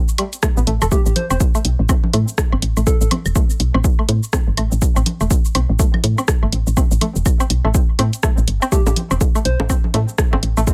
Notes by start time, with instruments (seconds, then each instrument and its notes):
0.08 cabasa
0.18 synth pluck G3, closed hi-hat, low woodblock
0.33 closed hi-hat, cabasa
0.43 synth pluck A3, kick, cross-stick, cabasa, low woodblock
0.57 fm bass A1, synth pluck B3, cabasa
0.67 fm bass A1, synth pluck A3, closed hi-hat
0.82 fm bass E1, synth pluck A4, cabasa, high woodblock, low woodblock
0.91 synth pluck A3, soft synth lead G4, kick, cabasa, low woodblock
1.06 fm bass A1, soft synth lead G4, cabasa
1.16 soft synth lead C5, closed hi-hat, low conga
1.30 fm bass E1, synth pluck C4, soft synth lead C5, cabasa, low woodblock
1.40 kick, cabasa
1.55 synth pluck A3, cabasa, low woodblock
1.65 fm bass B1, closed hi-hat
1.79 fm bass A1
1.89 synth pluck C4, kick, cabasa, high woodblock, low woodblock
2.04 low conga
2.13 fm bass A2, synth pluck A3, closed hi-hat, low woodblock
2.28 cabasa
2.38 kick, cross-stick, cabasa
2.52 fm bass G1, synth pluck C4, low woodblock
2.62 fm bass A1, closed hi-hat
2.77 fm bass A1, synth pluck A3, cabasa, low woodblock
2.87 soft synth lead A4, kick, cabasa
3.01 fm bass A1, soft synth lead A4, cabasa
3.11 synth pluck C4, closed hi-hat, low conga, low woodblock
3.26 fm bass E1, cabasa, high woodblock
3.35 synth pluck A3, kick, cabasa, low woodblock
3.50 cabasa
3.60 fm bass B1, closed hi-hat
3.74 fm bass A1, synth pluck C4, low woodblock
3.84 kick, cabasa
3.99 synth pluck A3, low woodblock
4.09 fm bass A2, closed hi-hat
4.23 cabasa
4.33 synth pluck C4, kick, cross-stick, cabasa, low woodblock
4.47 fm bass G1
4.57 fm bass A1, synth pluck A3, closed hi-hat, high woodblock, low woodblock
4.72 fm bass A1, cabasa
4.82 kick, cabasa
4.96 fm bass A1, synth pluck C4, cabasa, low woodblock
5.06 closed hi-hat, low conga
5.21 fm bass E1, synth pluck A3, cabasa, low woodblock
5.31 kick, cabasa
5.45 cabasa
5.55 fm bass B1, synth pluck C4, closed hi-hat, low woodblock
5.69 fm bass A1
5.79 synth pluck A3, kick, cabasa, low woodblock
5.94 low conga, high woodblock
6.04 fm bass A2, closed hi-hat
6.18 synth pluck C4, cabasa, low woodblock
6.28 kick, cross-stick, cabasa
6.43 fm bass G1, synth pluck A3, low woodblock
6.52 fm bass A1, closed hi-hat
6.67 fm bass A1, cabasa
6.77 synth pluck C4, kick, cabasa, low woodblock
6.91 fm bass A1, cabasa
7.01 synth pluck A3, closed hi-hat, low conga, low woodblock
7.16 fm bass E1, cabasa
7.26 kick, cabasa, high woodblock
7.40 synth pluck C4, cabasa, low woodblock
7.50 fm bass B1, closed hi-hat
7.65 fm bass A1, synth pluck A3, low woodblock
7.74 kick, cabasa
7.99 fm bass A2, synth pluck C4, closed hi-hat, low woodblock
8.13 closed hi-hat, cabasa
8.23 synth pluck A3, kick, cross-stick, cabasa, low woodblock
8.38 fm bass A1, cabasa
8.48 fm bass G1, closed hi-hat
8.62 synth pluck C4, cabasa, high woodblock, low woodblock
8.72 synth pluck A3, soft synth lead G4, kick, cabasa, low woodblock
8.86 fm bass A1, soft synth lead G4, high bongo, cabasa
8.96 closed hi-hat, low conga
9.11 fm bass E1, synth pluck C4, cabasa, low woodblock
9.21 kick, high bongo, cabasa
9.35 synth pluck A3, cabasa, low woodblock
9.45 fm bass B1, soft synth lead C5, closed hi-hat
9.60 fm bass A1, high bongo
9.70 synth pluck C4, kick, cabasa, high woodblock, low woodblock
9.84 low conga
9.94 fm bass A2, synth pluck A3, closed hi-hat, high bongo, low woodblock
10.08 cabasa
10.18 kick, cross-stick, cabasa
10.33 fm bass G1, synth pluck C4, high bongo, low woodblock
10.43 fm bass A1, closed hi-hat
10.57 fm bass A1, synth pluck A3, cabasa, low woodblock
10.67 kick, high bongo, cabasa